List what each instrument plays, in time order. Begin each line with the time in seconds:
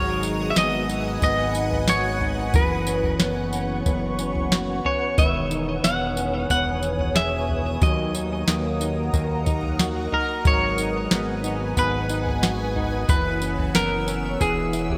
Already playing: analog synth bass G#1, clean electric guitar F#3 D#4 F#4 C#5, ambient pad B4 F#5 G#5 D#6
0.23 clean electric guitar D#4, tambourine
0.50 clean electric guitar E5
0.56 analog synth bass G#1, clean electric guitar B3 D#5, snare, tambourine
0.89 clean electric guitar D#4, tambourine
1.22 analog synth bass G#1, clean electric guitar B3 D#5, kick, floor tom, tambourine
1.55 clean electric guitar D#4, tambourine
1.71 floor tom
1.88 clean electric guitar F#4 C#5, snare, tambourine
2.21 clean electric guitar D#4, floor tom
2.54 analog synth bass F#1, clean electric guitar E3 B4, ambient pad C#5 C#6, kick, floor tom, tambourine
2.87 clean electric guitar C#4, tambourine
3.03 floor tom
3.20 analog synth bass F#1, clean electric guitar B3, snare, tambourine
3.53 clean electric guitar C#4, tambourine
3.86 analog synth bass F#1, clean electric guitar B3, kick, floor tom, tambourine
4.19 clean electric guitar C#4, tambourine
4.35 floor tom
4.52 clean electric guitar F#4, snare, tambourine
4.85 clean electric guitar C#4 C#5, floor tom
5.18 analog synth bass E1, clean electric guitar D#3 E5, ambient pad G#5 D#6, kick, floor tom, tambourine
5.51 clean electric guitar D#4, tambourine
5.84 analog synth bass E1, clean electric guitar B3 F#5, snare, tambourine
6.17 clean electric guitar C#4, tambourine
6.33 clean electric guitar D#4
6.50 analog synth bass E1, clean electric guitar B3 F#5, kick, floor tom, tambourine
6.83 tambourine
6.99 floor tom
7.16 clean electric guitar G#4 E5, snare, tambourine
7.49 floor tom
7.82 analog synth bass D#2, clean electric guitar F#3 D#5, ambient pad A#4 F#5 A#5, kick, floor tom, tambourine
8.14 clean electric guitar D#4, tambourine
8.47 analog synth bass D#2, clean electric guitar A#3, snare, tambourine
8.80 clean electric guitar D#4, tambourine
9.13 analog synth bass D#2, clean electric guitar A#3, kick, floor tom, tambourine
9.46 clean electric guitar D#4, kick, tambourine
9.63 floor tom
9.79 clean electric guitar F#4, snare, tambourine
10.12 clean electric guitar D#4 A#4, floor tom
10.45 analog synth bass G#1, clean electric guitar F#3 C#5, ambient pad B4 G#5, kick, floor tom, tambourine
10.78 clean electric guitar D#4, tambourine
11.11 analog synth bass G#1, clean electric guitar B3, snare, tambourine
11.44 clean electric guitar D#4, tambourine
11.77 analog synth bass G#1, clean electric guitar B3 B4, kick, floor tom, tambourine
12.09 clean electric guitar D#4, tambourine
12.26 floor tom
12.43 clean electric guitar F#4, snare, tambourine
12.76 clean electric guitar D#4, floor tom
13.08 analog synth bass F#1, clean electric guitar E3 B4, ambient pad C#5 E6, kick, floor tom, tambourine
13.42 clean electric guitar C#4, tambourine
13.58 floor tom
13.74 analog synth bass F#1, clean electric guitar B3 A#4, snare, tambourine
14.07 clean electric guitar C#4, tambourine
14.40 analog synth bass E1, clean electric guitar E3 G#4, ambient pad B3 E5 G#5 E6, kick, floor tom, tambourine
14.73 clean electric guitar E4, tambourine
14.90 floor tom